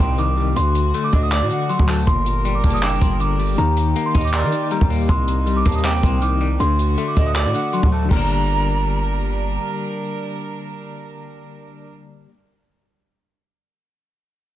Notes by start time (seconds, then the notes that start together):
Already playing: C3 G3 A#3 C4 D#4 G5
0.00 C2 C3 C6
0.18 D#3 D6, closed hi-hat
0.37 G3
0.56 D2 D3 A3 F#4 C6, closed hi-hat
0.75 closed hi-hat
0.94 A3, closed hi-hat
1.04 D6
1.13 D2 D4 D#5, kick, closed hi-hat
1.23 D#6
1.32 D5 D6, clap, closed hi-hat
1.42 A2
1.51 D3 F#5, closed hi-hat
1.69 F#3 C6, closed hi-hat
1.79 D2, kick
1.88 A3 A5, clap, open hi-hat
2.07 G1 A#2 G3 D4 A#4 C6, kick, closed hi-hat
2.26 closed hi-hat
2.45 G3, closed hi-hat
2.55 D6
2.64 F#1 A#3 A5, kick, closed hi-hat, open hi-hat
2.70 D#6, closed hi-hat
2.76 closed hi-hat
2.83 D4 G5 D6, clap, closed hi-hat
2.89 closed hi-hat
2.95 closed hi-hat
3.01 G1 G2 C6, kick, closed hi-hat
3.20 D3 D6, closed hi-hat
3.39 G3, open hi-hat
3.58 D#2 D#3 A#3 G4 A#5, closed hi-hat
3.77 closed hi-hat
3.96 A#3, closed hi-hat
4.06 C6
4.14 D#2 D#4 D#5, kick, closed hi-hat
4.21 D6, closed hi-hat
4.27 closed hi-hat
4.33 A#4 D5 C6, clap, closed hi-hat
4.40 D#3, closed hi-hat
4.46 closed hi-hat
4.52 D#3, closed hi-hat
4.71 G3 A#5, closed hi-hat
4.81 D#2, kick
4.90 A#3, open hi-hat
5.08 C2 C3 D#4 C6, kick, closed hi-hat
5.28 closed hi-hat
5.46 G3, closed hi-hat
5.57 D6
5.65 D#2 A#3 A5, kick, closed hi-hat
5.72 D#6, closed hi-hat
5.78 closed hi-hat
5.84 C4 G5 D6, clap, closed hi-hat
5.91 closed hi-hat
5.97 closed hi-hat
6.03 C2 C3 C6, kick, closed hi-hat
6.22 D#3 D6, closed hi-hat
6.41 G3
6.59 D2 D3 A3 F#4 C6, closed hi-hat
6.79 closed hi-hat
6.98 A3, closed hi-hat
7.08 D6
7.16 D2 D4 D#5, kick, closed hi-hat
7.27 D#6
7.35 D5 D6, clap, closed hi-hat
7.45 A2
7.54 D3 F#5, closed hi-hat
7.73 F#3 C6, closed hi-hat
7.83 D2, kick
7.92 A3 A5
8.05 D3
8.09 G1 G3 A#3 D4 A#4 A#5, kick, crash
8.17 D4